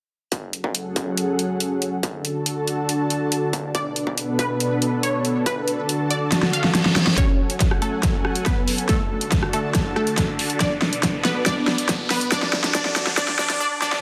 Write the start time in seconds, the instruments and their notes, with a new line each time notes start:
0.32 supersaw synth F#3 C#4 G#4 A4 F#5, kick, closed hi-hat
0.53 closed hi-hat
0.64 kick
0.75 closed hi-hat
0.96 kick, closed hi-hat
1.17 closed hi-hat
1.39 closed hi-hat
1.60 closed hi-hat
1.82 closed hi-hat
2.03 supersaw synth D3 D4 F#4 A4 A5, kick, closed hi-hat
2.25 closed hi-hat
2.46 closed hi-hat
2.68 closed hi-hat
2.89 closed hi-hat
3.10 closed hi-hat
3.32 closed hi-hat
3.53 kick, closed hi-hat
3.75 supersaw synth B2 B3 A4 B4, synth pluck D5, kick, closed hi-hat
3.96 closed hi-hat
4.07 kick
4.18 closed hi-hat
4.39 synth pluck B4, kick, closed hi-hat
4.60 closed hi-hat
4.82 closed hi-hat
5.03 synth pluck C#5, closed hi-hat
5.25 closed hi-hat
5.46 supersaw synth D3 F#4 A5, synth pluck B4, kick, closed hi-hat
5.68 closed hi-hat
5.89 closed hi-hat
6.11 synth pluck D5, closed hi-hat
6.32 snare, closed hi-hat, reverse cymbal
6.43 snare
6.53 synth pluck F5, closed hi-hat
6.64 snare
6.75 snare, closed hi-hat
6.86 snare
6.96 kick, snare, closed hi-hat
7.07 snare
7.18 supersaw synth F#3 C#4 A4 F#5 G#5, synth pluck C#4 C#5, kick, snare, closed hi-hat, riser
7.50 closed hi-hat
7.60 kick, snare, closed hi-hat
7.71 cross-stick
7.82 synth pluck A3 A4, closed hi-hat
8.03 kick, snare, closed hi-hat
8.25 cross-stick
8.35 closed hi-hat
8.46 synth pluck B3 B4, kick, cross-stick, snare, closed hi-hat
8.68 open hi-hat
8.78 closed hi-hat
8.89 supersaw synth D3 D4 F#4 A5, synth pluck A3 A4, kick, snare, closed hi-hat
9.21 closed hi-hat
9.32 kick, snare, closed hi-hat
9.43 cross-stick
9.53 synth pluck A3 A4, closed hi-hat
9.75 kick, snare, closed hi-hat
9.96 synth pluck A3 A4, cross-stick
10.07 closed hi-hat
10.18 kick, snare, closed hi-hat
10.39 open hi-hat
10.50 closed hi-hat
10.60 supersaw synth B2 B3 D5, synth pluck D4 D5, kick, snare, closed hi-hat
10.82 snare
10.93 closed hi-hat
11.03 kick, snare, closed hi-hat
11.25 synth pluck B3 B4, snare, closed hi-hat
11.46 synth pluck D4 D5, kick, snare, closed hi-hat
11.68 snare
11.78 closed hi-hat
11.89 kick, snare, closed hi-hat
12.10 synth pluck B3 B4, snare, open hi-hat
12.21 closed hi-hat
12.32 supersaw synth D3 F#4 A5, synth pluck D4 D5, kick, snare, closed hi-hat
12.43 snare
12.53 snare
12.64 snare, closed hi-hat
12.75 synth pluck D4 D5, kick, snare, closed hi-hat
12.85 snare
12.96 snare, closed hi-hat
13.07 snare
13.17 synth pluck D4 D5, kick, snare, closed hi-hat
13.28 snare
13.39 synth pluck D4 D5, snare
13.50 snare, closed hi-hat
13.60 synth pluck D4 D5
13.82 synth pluck D4 D5, snare
13.93 snare